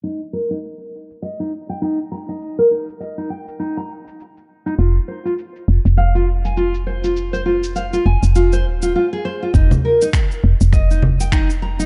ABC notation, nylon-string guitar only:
X:1
M:4/4
L:1/16
Q:"Swing 16ths" 1/4=101
K:Ebmix
V:1 name="Nylon-string guitar"
E z B E z4 e E z g E z b E- | E B E z e E g z E b z4 z E | F z c F z4 f F z a F z c F- | F c F z f F a z F c z F F A c F |
E z B E z4 e E z g E z b E |]